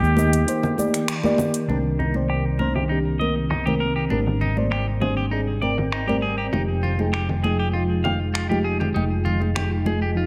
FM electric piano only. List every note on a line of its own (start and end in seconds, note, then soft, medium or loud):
0.00 0.13 A#3 medium
0.00 0.14 D#4 medium
0.00 0.14 G4 medium
0.00 0.14 D#5 medium
0.16 0.44 A#3 medium
0.16 0.44 D#4 medium
0.16 0.44 G4 medium
0.16 0.45 D#5 medium
0.46 0.74 A#3 medium
0.46 0.74 D#4 medium
0.46 0.75 G4 medium
0.46 0.75 C5 medium
0.77 1.20 A#3 medium
0.77 1.20 D#4 medium
0.77 1.20 G4 medium
0.77 1.21 D5 medium
1.23 1.65 A#3 loud
1.23 1.65 D#4 medium
1.23 1.66 G4 medium
1.23 1.66 D5 loud
1.68 2.11 D#3 medium
1.68 2.11 C4 medium
1.68 2.11 D4 medium
1.68 2.12 A#4 medium
2.14 2.56 D#3 medium
2.14 2.56 C4 medium
2.14 2.57 C5 medium
2.14 2.56 D5 medium
2.59 2.86 D#3 medium
2.59 2.86 C4 medium
2.59 2.87 D4 medium
2.59 2.87 C5 medium
2.89 3.16 D#3 medium
2.89 3.17 C4 medium
2.89 3.17 D4 medium
2.89 3.18 G4 medium
3.20 3.62 D#3 medium
3.20 3.62 C4 medium
3.20 3.63 A#4 medium
3.66 4.07 D#3 medium
3.66 4.08 C4 medium
3.66 4.09 A#4 medium
4.11 4.53 G3 medium
4.11 4.53 C4 medium
4.11 4.54 D4 medium
4.11 4.54 A#4 medium
4.56 4.98 G3 medium
4.56 4.98 C4 medium
4.56 4.99 C5 medium
4.56 4.99 D5 medium
5.00 5.28 G3 medium
5.00 5.28 C4 medium
5.00 5.29 D4 medium
5.00 5.29 C5 medium
5.31 5.58 G3 medium
5.31 5.59 C4 medium
5.31 5.59 D4 medium
5.31 5.59 G#4 medium
5.62 6.05 C4 medium
5.62 6.05 A#4 medium
5.62 6.05 D5 medium
6.07 6.49 G3 medium
6.07 6.50 C4 medium
6.07 6.50 A#4 medium
6.07 6.50 D5 medium
6.52 6.95 F3 medium
6.52 6.95 G#3 medium
6.52 6.96 D#4 medium
6.52 6.96 G4 medium
6.98 7.40 F3 medium
6.98 7.41 G#3 medium
6.98 7.41 D#4 medium
6.98 7.41 G#4 medium
7.43 7.71 F3 medium
7.43 7.71 G#3 medium
7.43 7.71 D#4 medium
7.43 7.72 G#4 medium
7.73 8.01 F3 medium
7.73 8.01 G#3 medium
7.73 8.02 D#4 medium
7.73 8.02 F4 medium
8.04 8.47 F3 medium
8.04 8.47 G#3 medium
8.04 8.47 D#4 medium
8.04 8.47 G5 medium
8.49 8.92 F3 medium
8.49 8.92 G#3 medium
8.49 8.92 D#4 medium
8.49 8.93 G4 loud
8.94 9.37 F3 medium
8.94 9.38 G#3 medium
8.94 9.38 D#4 medium
8.94 9.39 G5 medium
9.40 9.82 F3 medium
9.40 9.83 G#3 medium
9.40 9.83 D#4 medium
9.85 10.13 F3 medium
9.85 10.13 G#3 medium
9.85 10.13 D#4 medium
9.85 10.14 G#4 medium
10.15 10.26 F3 medium
10.15 10.26 G#3 medium
10.15 10.26 D#4 medium
10.15 10.26 F4 medium